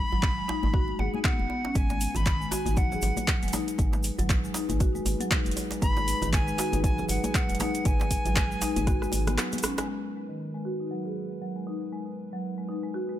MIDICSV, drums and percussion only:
0, 0, Header, 1, 3, 480
1, 0, Start_track
1, 0, Key_signature, 5, "minor"
1, 0, Tempo, 508475
1, 1656, Time_signature, 4, 2, 24, 8
1, 12455, End_track
2, 0, Start_track
2, 0, Title_t, "Djembe"
2, 117, Note_on_c, 9, 64, 87
2, 211, Note_off_c, 9, 64, 0
2, 462, Note_on_c, 9, 62, 99
2, 464, Note_on_c, 9, 63, 76
2, 557, Note_off_c, 9, 62, 0
2, 558, Note_off_c, 9, 63, 0
2, 598, Note_on_c, 9, 64, 76
2, 692, Note_off_c, 9, 64, 0
2, 935, Note_on_c, 9, 63, 96
2, 1029, Note_off_c, 9, 63, 0
2, 1414, Note_on_c, 9, 63, 71
2, 1508, Note_off_c, 9, 63, 0
2, 1554, Note_on_c, 9, 62, 79
2, 1648, Note_off_c, 9, 62, 0
2, 1794, Note_on_c, 9, 62, 70
2, 1795, Note_on_c, 9, 63, 86
2, 1889, Note_off_c, 9, 62, 0
2, 1890, Note_off_c, 9, 63, 0
2, 2026, Note_on_c, 9, 64, 84
2, 2120, Note_off_c, 9, 64, 0
2, 2372, Note_on_c, 9, 63, 80
2, 2376, Note_on_c, 9, 62, 88
2, 2466, Note_off_c, 9, 63, 0
2, 2470, Note_off_c, 9, 62, 0
2, 2507, Note_on_c, 9, 64, 88
2, 2601, Note_off_c, 9, 64, 0
2, 2857, Note_on_c, 9, 63, 91
2, 2952, Note_off_c, 9, 63, 0
2, 2991, Note_on_c, 9, 63, 80
2, 3086, Note_off_c, 9, 63, 0
2, 3336, Note_on_c, 9, 62, 97
2, 3339, Note_on_c, 9, 63, 80
2, 3430, Note_off_c, 9, 62, 0
2, 3434, Note_off_c, 9, 63, 0
2, 3709, Note_on_c, 9, 63, 89
2, 3713, Note_on_c, 9, 62, 82
2, 3803, Note_off_c, 9, 63, 0
2, 3807, Note_off_c, 9, 62, 0
2, 3952, Note_on_c, 9, 64, 98
2, 4046, Note_off_c, 9, 64, 0
2, 4288, Note_on_c, 9, 62, 98
2, 4297, Note_on_c, 9, 63, 73
2, 4382, Note_off_c, 9, 62, 0
2, 4392, Note_off_c, 9, 63, 0
2, 4427, Note_on_c, 9, 64, 82
2, 4521, Note_off_c, 9, 64, 0
2, 4772, Note_on_c, 9, 63, 83
2, 4866, Note_off_c, 9, 63, 0
2, 5253, Note_on_c, 9, 63, 79
2, 5348, Note_off_c, 9, 63, 0
2, 5387, Note_on_c, 9, 62, 75
2, 5481, Note_off_c, 9, 62, 0
2, 5633, Note_on_c, 9, 62, 75
2, 5639, Note_on_c, 9, 63, 82
2, 5728, Note_off_c, 9, 62, 0
2, 5733, Note_off_c, 9, 63, 0
2, 5870, Note_on_c, 9, 64, 89
2, 5964, Note_off_c, 9, 64, 0
2, 6211, Note_on_c, 9, 63, 72
2, 6218, Note_on_c, 9, 62, 107
2, 6305, Note_off_c, 9, 63, 0
2, 6313, Note_off_c, 9, 62, 0
2, 6352, Note_on_c, 9, 64, 85
2, 6446, Note_off_c, 9, 64, 0
2, 6689, Note_on_c, 9, 63, 82
2, 6783, Note_off_c, 9, 63, 0
2, 6833, Note_on_c, 9, 63, 84
2, 6928, Note_off_c, 9, 63, 0
2, 7179, Note_on_c, 9, 62, 107
2, 7179, Note_on_c, 9, 63, 66
2, 7273, Note_off_c, 9, 62, 0
2, 7274, Note_off_c, 9, 63, 0
2, 7548, Note_on_c, 9, 63, 82
2, 7561, Note_on_c, 9, 62, 88
2, 7643, Note_off_c, 9, 63, 0
2, 7656, Note_off_c, 9, 62, 0
2, 7803, Note_on_c, 9, 64, 94
2, 7897, Note_off_c, 9, 64, 0
2, 8132, Note_on_c, 9, 63, 78
2, 8134, Note_on_c, 9, 62, 97
2, 8227, Note_off_c, 9, 63, 0
2, 8228, Note_off_c, 9, 62, 0
2, 8272, Note_on_c, 9, 64, 88
2, 8366, Note_off_c, 9, 64, 0
2, 8373, Note_on_c, 9, 63, 62
2, 8467, Note_off_c, 9, 63, 0
2, 8606, Note_on_c, 9, 63, 84
2, 8700, Note_off_c, 9, 63, 0
2, 9092, Note_on_c, 9, 63, 70
2, 9186, Note_off_c, 9, 63, 0
2, 9232, Note_on_c, 9, 62, 88
2, 9326, Note_off_c, 9, 62, 0
2, 12455, End_track
3, 0, Start_track
3, 0, Title_t, "Drums"
3, 214, Note_on_c, 9, 39, 104
3, 215, Note_on_c, 9, 36, 118
3, 219, Note_on_c, 9, 62, 46
3, 309, Note_off_c, 9, 36, 0
3, 309, Note_off_c, 9, 39, 0
3, 313, Note_off_c, 9, 62, 0
3, 453, Note_on_c, 9, 62, 36
3, 547, Note_off_c, 9, 62, 0
3, 594, Note_on_c, 9, 63, 101
3, 688, Note_off_c, 9, 63, 0
3, 695, Note_on_c, 9, 36, 121
3, 789, Note_off_c, 9, 36, 0
3, 828, Note_on_c, 9, 62, 46
3, 922, Note_off_c, 9, 62, 0
3, 938, Note_on_c, 9, 63, 70
3, 1033, Note_off_c, 9, 63, 0
3, 1072, Note_on_c, 9, 62, 35
3, 1080, Note_on_c, 9, 63, 95
3, 1166, Note_off_c, 9, 62, 0
3, 1175, Note_off_c, 9, 63, 0
3, 1175, Note_on_c, 9, 36, 121
3, 1175, Note_on_c, 9, 39, 107
3, 1269, Note_off_c, 9, 36, 0
3, 1269, Note_off_c, 9, 39, 0
3, 1311, Note_on_c, 9, 63, 63
3, 1316, Note_on_c, 9, 62, 47
3, 1406, Note_off_c, 9, 63, 0
3, 1411, Note_off_c, 9, 62, 0
3, 1652, Note_on_c, 9, 82, 49
3, 1654, Note_on_c, 9, 36, 114
3, 1656, Note_on_c, 9, 42, 52
3, 1662, Note_on_c, 9, 62, 51
3, 1746, Note_off_c, 9, 82, 0
3, 1749, Note_off_c, 9, 36, 0
3, 1750, Note_off_c, 9, 42, 0
3, 1757, Note_off_c, 9, 62, 0
3, 1790, Note_on_c, 9, 82, 33
3, 1794, Note_on_c, 9, 63, 60
3, 1885, Note_off_c, 9, 82, 0
3, 1889, Note_off_c, 9, 63, 0
3, 1894, Note_on_c, 9, 62, 38
3, 1895, Note_on_c, 9, 82, 90
3, 1896, Note_on_c, 9, 46, 82
3, 1988, Note_off_c, 9, 62, 0
3, 1989, Note_off_c, 9, 82, 0
3, 1990, Note_off_c, 9, 46, 0
3, 2033, Note_on_c, 9, 82, 35
3, 2035, Note_on_c, 9, 64, 72
3, 2036, Note_on_c, 9, 42, 41
3, 2128, Note_off_c, 9, 82, 0
3, 2129, Note_off_c, 9, 64, 0
3, 2130, Note_off_c, 9, 42, 0
3, 2131, Note_on_c, 9, 82, 53
3, 2134, Note_on_c, 9, 36, 117
3, 2134, Note_on_c, 9, 62, 46
3, 2136, Note_on_c, 9, 39, 101
3, 2136, Note_on_c, 9, 42, 53
3, 2225, Note_off_c, 9, 82, 0
3, 2229, Note_off_c, 9, 36, 0
3, 2229, Note_off_c, 9, 62, 0
3, 2231, Note_off_c, 9, 39, 0
3, 2231, Note_off_c, 9, 42, 0
3, 2280, Note_on_c, 9, 82, 33
3, 2374, Note_off_c, 9, 82, 0
3, 2376, Note_on_c, 9, 62, 37
3, 2377, Note_on_c, 9, 46, 71
3, 2380, Note_on_c, 9, 82, 95
3, 2471, Note_off_c, 9, 46, 0
3, 2471, Note_off_c, 9, 62, 0
3, 2475, Note_off_c, 9, 82, 0
3, 2511, Note_on_c, 9, 63, 99
3, 2515, Note_on_c, 9, 42, 42
3, 2522, Note_on_c, 9, 82, 36
3, 2605, Note_off_c, 9, 63, 0
3, 2609, Note_off_c, 9, 42, 0
3, 2612, Note_off_c, 9, 82, 0
3, 2612, Note_on_c, 9, 82, 51
3, 2615, Note_on_c, 9, 36, 115
3, 2617, Note_on_c, 9, 42, 50
3, 2706, Note_off_c, 9, 82, 0
3, 2709, Note_off_c, 9, 36, 0
3, 2711, Note_off_c, 9, 42, 0
3, 2756, Note_on_c, 9, 64, 102
3, 2757, Note_on_c, 9, 82, 34
3, 2761, Note_on_c, 9, 62, 46
3, 2847, Note_off_c, 9, 82, 0
3, 2847, Note_on_c, 9, 82, 84
3, 2851, Note_off_c, 9, 64, 0
3, 2855, Note_off_c, 9, 62, 0
3, 2857, Note_on_c, 9, 46, 81
3, 2858, Note_on_c, 9, 64, 84
3, 2941, Note_off_c, 9, 82, 0
3, 2951, Note_off_c, 9, 46, 0
3, 2952, Note_off_c, 9, 64, 0
3, 2991, Note_on_c, 9, 62, 36
3, 2992, Note_on_c, 9, 63, 98
3, 2992, Note_on_c, 9, 82, 38
3, 2996, Note_on_c, 9, 42, 42
3, 3086, Note_off_c, 9, 62, 0
3, 3086, Note_off_c, 9, 63, 0
3, 3086, Note_off_c, 9, 82, 0
3, 3091, Note_off_c, 9, 42, 0
3, 3092, Note_on_c, 9, 82, 46
3, 3094, Note_on_c, 9, 36, 114
3, 3096, Note_on_c, 9, 39, 100
3, 3096, Note_on_c, 9, 42, 53
3, 3186, Note_off_c, 9, 82, 0
3, 3189, Note_off_c, 9, 36, 0
3, 3190, Note_off_c, 9, 39, 0
3, 3190, Note_off_c, 9, 42, 0
3, 3233, Note_on_c, 9, 82, 37
3, 3235, Note_on_c, 9, 42, 38
3, 3236, Note_on_c, 9, 62, 47
3, 3285, Note_off_c, 9, 42, 0
3, 3285, Note_on_c, 9, 42, 49
3, 3327, Note_off_c, 9, 82, 0
3, 3330, Note_off_c, 9, 62, 0
3, 3332, Note_on_c, 9, 82, 92
3, 3333, Note_on_c, 9, 63, 83
3, 3334, Note_on_c, 9, 46, 75
3, 3341, Note_on_c, 9, 64, 73
3, 3379, Note_off_c, 9, 42, 0
3, 3426, Note_off_c, 9, 82, 0
3, 3428, Note_off_c, 9, 46, 0
3, 3428, Note_off_c, 9, 63, 0
3, 3435, Note_off_c, 9, 64, 0
3, 3473, Note_on_c, 9, 42, 40
3, 3476, Note_on_c, 9, 82, 41
3, 3568, Note_off_c, 9, 42, 0
3, 3570, Note_off_c, 9, 82, 0
3, 3570, Note_on_c, 9, 62, 53
3, 3575, Note_on_c, 9, 36, 112
3, 3575, Note_on_c, 9, 42, 53
3, 3578, Note_on_c, 9, 82, 45
3, 3664, Note_off_c, 9, 62, 0
3, 3669, Note_off_c, 9, 36, 0
3, 3670, Note_off_c, 9, 42, 0
3, 3672, Note_off_c, 9, 82, 0
3, 3712, Note_on_c, 9, 63, 64
3, 3712, Note_on_c, 9, 82, 32
3, 3806, Note_off_c, 9, 63, 0
3, 3807, Note_off_c, 9, 82, 0
3, 3807, Note_on_c, 9, 82, 80
3, 3813, Note_on_c, 9, 62, 39
3, 3816, Note_on_c, 9, 46, 85
3, 3901, Note_off_c, 9, 82, 0
3, 3907, Note_off_c, 9, 62, 0
3, 3910, Note_off_c, 9, 46, 0
3, 3951, Note_on_c, 9, 82, 38
3, 3957, Note_on_c, 9, 42, 42
3, 4045, Note_off_c, 9, 82, 0
3, 4051, Note_off_c, 9, 42, 0
3, 4055, Note_on_c, 9, 36, 114
3, 4056, Note_on_c, 9, 39, 100
3, 4056, Note_on_c, 9, 42, 55
3, 4058, Note_on_c, 9, 62, 51
3, 4058, Note_on_c, 9, 82, 52
3, 4149, Note_off_c, 9, 36, 0
3, 4151, Note_off_c, 9, 39, 0
3, 4151, Note_off_c, 9, 42, 0
3, 4152, Note_off_c, 9, 62, 0
3, 4152, Note_off_c, 9, 82, 0
3, 4195, Note_on_c, 9, 82, 32
3, 4287, Note_on_c, 9, 62, 35
3, 4289, Note_off_c, 9, 82, 0
3, 4295, Note_on_c, 9, 46, 74
3, 4299, Note_on_c, 9, 82, 83
3, 4381, Note_off_c, 9, 62, 0
3, 4389, Note_off_c, 9, 46, 0
3, 4393, Note_off_c, 9, 82, 0
3, 4433, Note_on_c, 9, 63, 98
3, 4434, Note_on_c, 9, 42, 43
3, 4436, Note_on_c, 9, 82, 35
3, 4528, Note_off_c, 9, 42, 0
3, 4528, Note_off_c, 9, 63, 0
3, 4530, Note_off_c, 9, 82, 0
3, 4534, Note_on_c, 9, 42, 51
3, 4534, Note_on_c, 9, 82, 46
3, 4535, Note_on_c, 9, 36, 114
3, 4629, Note_off_c, 9, 36, 0
3, 4629, Note_off_c, 9, 42, 0
3, 4629, Note_off_c, 9, 82, 0
3, 4672, Note_on_c, 9, 62, 49
3, 4677, Note_on_c, 9, 82, 33
3, 4767, Note_off_c, 9, 62, 0
3, 4772, Note_off_c, 9, 82, 0
3, 4772, Note_on_c, 9, 63, 59
3, 4775, Note_on_c, 9, 46, 84
3, 4777, Note_on_c, 9, 82, 84
3, 4867, Note_off_c, 9, 63, 0
3, 4869, Note_off_c, 9, 46, 0
3, 4871, Note_off_c, 9, 82, 0
3, 4910, Note_on_c, 9, 63, 96
3, 4914, Note_on_c, 9, 42, 42
3, 4914, Note_on_c, 9, 62, 36
3, 4919, Note_on_c, 9, 82, 38
3, 5005, Note_off_c, 9, 63, 0
3, 5009, Note_off_c, 9, 42, 0
3, 5009, Note_off_c, 9, 62, 0
3, 5013, Note_off_c, 9, 82, 0
3, 5015, Note_on_c, 9, 36, 114
3, 5015, Note_on_c, 9, 39, 102
3, 5015, Note_on_c, 9, 42, 54
3, 5017, Note_on_c, 9, 82, 45
3, 5109, Note_off_c, 9, 36, 0
3, 5110, Note_off_c, 9, 39, 0
3, 5110, Note_off_c, 9, 42, 0
3, 5112, Note_off_c, 9, 82, 0
3, 5143, Note_on_c, 9, 62, 51
3, 5148, Note_on_c, 9, 63, 64
3, 5155, Note_on_c, 9, 42, 39
3, 5156, Note_on_c, 9, 82, 32
3, 5206, Note_off_c, 9, 42, 0
3, 5206, Note_on_c, 9, 42, 53
3, 5238, Note_off_c, 9, 62, 0
3, 5242, Note_off_c, 9, 63, 0
3, 5251, Note_off_c, 9, 82, 0
3, 5255, Note_on_c, 9, 82, 84
3, 5256, Note_on_c, 9, 46, 73
3, 5300, Note_off_c, 9, 42, 0
3, 5350, Note_off_c, 9, 82, 0
3, 5351, Note_off_c, 9, 46, 0
3, 5397, Note_on_c, 9, 42, 44
3, 5403, Note_on_c, 9, 82, 39
3, 5491, Note_off_c, 9, 42, 0
3, 5495, Note_off_c, 9, 82, 0
3, 5495, Note_on_c, 9, 36, 110
3, 5495, Note_on_c, 9, 82, 50
3, 5497, Note_on_c, 9, 42, 57
3, 5497, Note_on_c, 9, 62, 55
3, 5589, Note_off_c, 9, 36, 0
3, 5590, Note_off_c, 9, 82, 0
3, 5591, Note_off_c, 9, 42, 0
3, 5592, Note_off_c, 9, 62, 0
3, 5631, Note_on_c, 9, 63, 62
3, 5638, Note_on_c, 9, 82, 32
3, 5725, Note_off_c, 9, 63, 0
3, 5730, Note_on_c, 9, 62, 42
3, 5732, Note_off_c, 9, 82, 0
3, 5737, Note_on_c, 9, 46, 86
3, 5738, Note_on_c, 9, 82, 75
3, 5825, Note_off_c, 9, 62, 0
3, 5832, Note_off_c, 9, 46, 0
3, 5832, Note_off_c, 9, 82, 0
3, 5871, Note_on_c, 9, 64, 84
3, 5875, Note_on_c, 9, 82, 35
3, 5876, Note_on_c, 9, 42, 44
3, 5965, Note_off_c, 9, 64, 0
3, 5969, Note_off_c, 9, 82, 0
3, 5971, Note_off_c, 9, 42, 0
3, 5973, Note_on_c, 9, 62, 54
3, 5975, Note_on_c, 9, 36, 113
3, 5977, Note_on_c, 9, 39, 97
3, 5977, Note_on_c, 9, 42, 57
3, 5978, Note_on_c, 9, 82, 44
3, 6068, Note_off_c, 9, 62, 0
3, 6069, Note_off_c, 9, 36, 0
3, 6072, Note_off_c, 9, 39, 0
3, 6072, Note_off_c, 9, 42, 0
3, 6073, Note_off_c, 9, 82, 0
3, 6114, Note_on_c, 9, 82, 36
3, 6207, Note_on_c, 9, 62, 40
3, 6208, Note_off_c, 9, 82, 0
3, 6215, Note_on_c, 9, 46, 75
3, 6222, Note_on_c, 9, 82, 93
3, 6302, Note_off_c, 9, 62, 0
3, 6309, Note_off_c, 9, 46, 0
3, 6316, Note_off_c, 9, 82, 0
3, 6347, Note_on_c, 9, 63, 86
3, 6355, Note_on_c, 9, 82, 38
3, 6356, Note_on_c, 9, 42, 45
3, 6442, Note_off_c, 9, 63, 0
3, 6450, Note_off_c, 9, 42, 0
3, 6450, Note_off_c, 9, 82, 0
3, 6455, Note_on_c, 9, 36, 113
3, 6456, Note_on_c, 9, 42, 54
3, 6461, Note_on_c, 9, 82, 49
3, 6549, Note_off_c, 9, 36, 0
3, 6551, Note_off_c, 9, 42, 0
3, 6556, Note_off_c, 9, 82, 0
3, 6591, Note_on_c, 9, 82, 32
3, 6592, Note_on_c, 9, 62, 52
3, 6598, Note_on_c, 9, 64, 99
3, 6685, Note_off_c, 9, 82, 0
3, 6687, Note_off_c, 9, 62, 0
3, 6689, Note_off_c, 9, 64, 0
3, 6689, Note_on_c, 9, 64, 91
3, 6692, Note_on_c, 9, 82, 90
3, 6696, Note_on_c, 9, 46, 86
3, 6783, Note_off_c, 9, 64, 0
3, 6787, Note_off_c, 9, 82, 0
3, 6791, Note_off_c, 9, 46, 0
3, 6833, Note_on_c, 9, 62, 42
3, 6833, Note_on_c, 9, 63, 100
3, 6833, Note_on_c, 9, 82, 40
3, 6835, Note_on_c, 9, 42, 46
3, 6927, Note_off_c, 9, 62, 0
3, 6927, Note_off_c, 9, 63, 0
3, 6927, Note_off_c, 9, 82, 0
3, 6930, Note_off_c, 9, 42, 0
3, 6935, Note_on_c, 9, 36, 114
3, 6936, Note_on_c, 9, 39, 99
3, 6936, Note_on_c, 9, 42, 55
3, 6938, Note_on_c, 9, 82, 49
3, 7029, Note_off_c, 9, 36, 0
3, 7031, Note_off_c, 9, 39, 0
3, 7031, Note_off_c, 9, 42, 0
3, 7033, Note_off_c, 9, 82, 0
3, 7070, Note_on_c, 9, 62, 55
3, 7076, Note_on_c, 9, 42, 41
3, 7078, Note_on_c, 9, 82, 36
3, 7124, Note_off_c, 9, 42, 0
3, 7124, Note_on_c, 9, 42, 54
3, 7164, Note_off_c, 9, 62, 0
3, 7170, Note_on_c, 9, 64, 82
3, 7171, Note_on_c, 9, 63, 89
3, 7172, Note_off_c, 9, 82, 0
3, 7172, Note_on_c, 9, 82, 78
3, 7174, Note_on_c, 9, 46, 76
3, 7218, Note_off_c, 9, 42, 0
3, 7264, Note_off_c, 9, 64, 0
3, 7266, Note_off_c, 9, 63, 0
3, 7266, Note_off_c, 9, 82, 0
3, 7268, Note_off_c, 9, 46, 0
3, 7312, Note_on_c, 9, 82, 37
3, 7313, Note_on_c, 9, 42, 45
3, 7406, Note_off_c, 9, 82, 0
3, 7408, Note_off_c, 9, 42, 0
3, 7412, Note_on_c, 9, 42, 57
3, 7415, Note_on_c, 9, 36, 114
3, 7417, Note_on_c, 9, 82, 44
3, 7419, Note_on_c, 9, 62, 50
3, 7507, Note_off_c, 9, 42, 0
3, 7509, Note_off_c, 9, 36, 0
3, 7511, Note_off_c, 9, 82, 0
3, 7513, Note_off_c, 9, 62, 0
3, 7554, Note_on_c, 9, 63, 57
3, 7557, Note_on_c, 9, 82, 33
3, 7649, Note_off_c, 9, 63, 0
3, 7649, Note_on_c, 9, 62, 39
3, 7651, Note_off_c, 9, 82, 0
3, 7653, Note_on_c, 9, 46, 88
3, 7654, Note_on_c, 9, 36, 57
3, 7656, Note_on_c, 9, 82, 76
3, 7744, Note_off_c, 9, 62, 0
3, 7747, Note_off_c, 9, 46, 0
3, 7749, Note_off_c, 9, 36, 0
3, 7751, Note_off_c, 9, 82, 0
3, 7790, Note_on_c, 9, 64, 86
3, 7793, Note_on_c, 9, 42, 44
3, 7795, Note_on_c, 9, 82, 38
3, 7884, Note_off_c, 9, 64, 0
3, 7887, Note_off_c, 9, 42, 0
3, 7889, Note_off_c, 9, 82, 0
3, 7891, Note_on_c, 9, 62, 53
3, 7892, Note_on_c, 9, 82, 48
3, 7893, Note_on_c, 9, 39, 99
3, 7893, Note_on_c, 9, 42, 58
3, 7894, Note_on_c, 9, 36, 116
3, 7985, Note_off_c, 9, 62, 0
3, 7987, Note_off_c, 9, 39, 0
3, 7987, Note_off_c, 9, 42, 0
3, 7987, Note_off_c, 9, 82, 0
3, 7988, Note_off_c, 9, 36, 0
3, 8037, Note_on_c, 9, 82, 31
3, 8132, Note_off_c, 9, 82, 0
3, 8133, Note_on_c, 9, 46, 79
3, 8133, Note_on_c, 9, 62, 41
3, 8133, Note_on_c, 9, 82, 94
3, 8227, Note_off_c, 9, 46, 0
3, 8228, Note_off_c, 9, 62, 0
3, 8228, Note_off_c, 9, 82, 0
3, 8273, Note_on_c, 9, 42, 47
3, 8274, Note_on_c, 9, 63, 95
3, 8276, Note_on_c, 9, 82, 39
3, 8368, Note_off_c, 9, 42, 0
3, 8368, Note_off_c, 9, 63, 0
3, 8370, Note_off_c, 9, 82, 0
3, 8374, Note_on_c, 9, 36, 118
3, 8374, Note_on_c, 9, 37, 58
3, 8374, Note_on_c, 9, 42, 57
3, 8377, Note_on_c, 9, 82, 49
3, 8468, Note_off_c, 9, 36, 0
3, 8469, Note_off_c, 9, 37, 0
3, 8469, Note_off_c, 9, 42, 0
3, 8471, Note_off_c, 9, 82, 0
3, 8514, Note_on_c, 9, 37, 56
3, 8519, Note_on_c, 9, 62, 60
3, 8524, Note_on_c, 9, 82, 35
3, 8609, Note_off_c, 9, 37, 0
3, 8609, Note_on_c, 9, 63, 60
3, 8613, Note_off_c, 9, 62, 0
3, 8614, Note_on_c, 9, 46, 86
3, 8619, Note_off_c, 9, 82, 0
3, 8619, Note_on_c, 9, 82, 95
3, 8703, Note_off_c, 9, 63, 0
3, 8709, Note_off_c, 9, 46, 0
3, 8713, Note_off_c, 9, 82, 0
3, 8751, Note_on_c, 9, 64, 85
3, 8754, Note_on_c, 9, 37, 67
3, 8754, Note_on_c, 9, 42, 47
3, 8755, Note_on_c, 9, 63, 106
3, 8755, Note_on_c, 9, 82, 37
3, 8759, Note_on_c, 9, 62, 36
3, 8845, Note_off_c, 9, 64, 0
3, 8849, Note_off_c, 9, 37, 0
3, 8849, Note_off_c, 9, 42, 0
3, 8849, Note_off_c, 9, 82, 0
3, 8850, Note_off_c, 9, 63, 0
3, 8853, Note_off_c, 9, 62, 0
3, 8856, Note_on_c, 9, 37, 84
3, 8856, Note_on_c, 9, 39, 104
3, 8856, Note_on_c, 9, 42, 59
3, 8856, Note_on_c, 9, 82, 47
3, 8950, Note_off_c, 9, 37, 0
3, 8950, Note_off_c, 9, 39, 0
3, 8950, Note_off_c, 9, 42, 0
3, 8950, Note_off_c, 9, 82, 0
3, 8991, Note_on_c, 9, 82, 35
3, 8995, Note_on_c, 9, 42, 42
3, 8997, Note_on_c, 9, 62, 57
3, 8997, Note_on_c, 9, 63, 65
3, 9045, Note_off_c, 9, 42, 0
3, 9045, Note_on_c, 9, 42, 55
3, 9085, Note_off_c, 9, 82, 0
3, 9089, Note_on_c, 9, 82, 90
3, 9091, Note_off_c, 9, 63, 0
3, 9092, Note_off_c, 9, 62, 0
3, 9097, Note_on_c, 9, 37, 100
3, 9097, Note_on_c, 9, 46, 80
3, 9140, Note_off_c, 9, 42, 0
3, 9183, Note_off_c, 9, 82, 0
3, 9191, Note_off_c, 9, 37, 0
3, 9191, Note_off_c, 9, 46, 0
3, 9231, Note_on_c, 9, 82, 39
3, 9236, Note_on_c, 9, 37, 86
3, 9236, Note_on_c, 9, 42, 48
3, 9325, Note_off_c, 9, 82, 0
3, 9330, Note_off_c, 9, 37, 0
3, 9330, Note_off_c, 9, 42, 0
3, 12455, End_track
0, 0, End_of_file